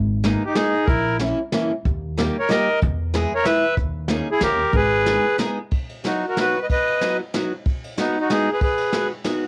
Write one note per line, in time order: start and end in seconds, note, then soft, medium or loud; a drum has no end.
0.00 0.33 G#1 loud
0.24 0.41 G#3 medium
0.24 0.41 A#3 medium
0.24 0.42 B3 medium
0.24 0.42 D#4 medium
0.24 snare medium
0.24 closed hi-hat soft
0.45 0.53 D#4 medium
0.45 0.56 G4 medium
0.54 0.73 G#3 medium
0.54 0.73 A#3 medium
0.54 0.74 B3 soft
0.54 0.85 D#4 medium
0.54 0.74 D#4 medium
0.54 0.88 G#4 loud
0.54 snare medium
0.54 closed hi-hat medium
0.85 1.30 A#1 medium
0.85 1.17 E4 medium
0.85 1.16 A#4 loud
0.85 kick medium
0.85 closed hi-hat soft
1.19 1.37 E3 medium
1.19 1.37 A#3 soft
1.19 1.38 C#4 medium
1.19 1.38 E4 medium
1.19 snare medium
1.19 closed hi-hat soft
1.52 1.70 E3 medium
1.52 1.71 A#3 medium
1.52 1.71 C#4 medium
1.52 1.71 E4 medium
1.52 snare medium
1.52 closed hi-hat soft
1.85 2.27 D#2 medium
1.85 kick medium
1.85 closed hi-hat soft
2.17 2.35 G3 medium
2.17 2.36 A#3 medium
2.17 2.36 D#4 medium
2.17 2.36 G4 medium
2.17 snare medium
2.17 closed hi-hat soft
2.39 2.49 A#4 medium
2.39 2.50 C#5 medium
2.49 2.67 G3 medium
2.49 2.67 A#3 medium
2.49 2.67 D#4 medium
2.49 2.67 G4 medium
2.49 2.80 A#4 medium
2.49 2.79 D#5 loud
2.49 snare medium
2.49 closed hi-hat soft
2.82 3.24 E2 loud
2.82 kick medium
2.82 closed hi-hat soft
3.14 3.31 G#3 medium
3.14 3.32 B3 medium
3.14 3.32 E4 medium
3.14 3.32 G#4 medium
3.14 snare medium
3.14 closed hi-hat soft
3.35 3.45 A#4 medium
3.35 3.46 C#5 medium
3.44 3.63 G#3 medium
3.44 3.63 B3 medium
3.44 3.63 E4 medium
3.44 3.63 G#4 medium
3.44 3.75 B4 medium
3.44 3.74 E5 loud
3.44 snare medium
3.44 closed hi-hat soft
3.77 4.19 D#2 medium
3.77 kick medium
3.77 closed hi-hat soft
4.08 4.27 A#3 medium
4.08 4.27 C#4 medium
4.08 4.27 D#4 medium
4.08 4.27 G#4 medium
4.08 snare medium
4.08 closed hi-hat soft
4.32 4.41 E4 medium
4.32 4.42 G#4 medium
4.41 4.63 D#2 medium
4.41 4.59 A#3 medium
4.41 4.59 C#4 medium
4.41 4.59 D#4 medium
4.41 4.60 G4 medium
4.41 4.72 G4 medium
4.41 4.76 A#4 loud
4.41 snare medium
4.41 closed hi-hat soft
4.73 5.16 G#1 medium
4.73 5.37 G#4 medium
4.73 5.37 B4 loud
4.73 kick medium
4.73 closed hi-hat soft
5.06 5.25 G#3 medium
5.06 5.25 B3 soft
5.06 5.25 D#4 medium
5.06 5.25 G#4 medium
5.06 snare medium
5.06 closed hi-hat soft
5.38 5.57 G#3 medium
5.38 5.57 B3 medium
5.38 5.58 D#4 medium
5.38 5.58 G#4 loud
5.38 snare medium
5.38 closed hi-hat soft
5.71 kick medium
5.71 ride soft
5.89 ride soft
6.04 6.23 F#3 medium
6.04 6.23 B3 soft
6.04 6.23 D#4 soft
6.04 6.26 D#4 medium
6.04 6.23 F#4 medium
6.04 6.26 F#4 medium
6.04 snare medium
6.04 ride soft
6.28 6.37 F#4 medium
6.28 6.39 A#4 medium
6.37 6.55 F#3 medium
6.37 6.55 B3 medium
6.37 6.55 D#4 medium
6.37 6.56 F#4 medium
6.37 6.59 F#4 medium
6.37 snare medium
6.37 ride soft
6.41 6.60 B4 loud
6.61 6.66 B4 medium
6.61 6.67 D#5 medium
6.70 7.17 B4 medium
6.70 7.17 D#5 medium
6.70 kick medium
6.70 ride soft
6.87 ride soft
7.01 7.19 F#3 medium
7.01 7.19 B3 medium
7.01 7.19 D#4 medium
7.01 7.20 F#4 medium
7.01 snare medium
7.01 ride soft
7.34 7.51 F#3 medium
7.34 7.51 B3 medium
7.34 7.51 D#4 medium
7.34 7.52 F#4 medium
7.34 snare medium
7.34 ride soft
7.65 kick medium
7.65 ride soft
7.84 ride soft
7.98 8.15 G#3 medium
7.98 8.18 B3 medium
7.98 8.15 B3 soft
7.98 8.15 D#4 soft
7.98 8.18 D#4 medium
7.98 8.15 F#4 medium
7.98 snare medium
7.98 ride soft
8.20 8.28 D#4 medium
8.20 8.31 F#4 medium
8.30 8.47 G#3 medium
8.30 8.47 B3 medium
8.30 8.49 D#4 medium
8.30 8.47 D#4 medium
8.30 8.47 F#4 medium
8.30 8.50 G#4 loud
8.30 snare medium
8.30 ride soft
8.52 8.60 G#4 medium
8.52 8.61 B4 medium
8.61 9.08 G#4 medium
8.61 9.08 B4 medium
8.61 kick medium
8.61 ride soft
8.78 ride soft
8.92 9.11 G#3 medium
8.92 9.10 B3 soft
8.92 9.11 D#4 soft
8.92 9.11 F#4 medium
8.92 snare medium
8.92 ride soft
9.24 9.43 G#3 medium
9.24 9.43 B3 medium
9.24 9.43 D#4 medium
9.24 9.43 F#4 medium
9.24 snare medium
9.24 ride soft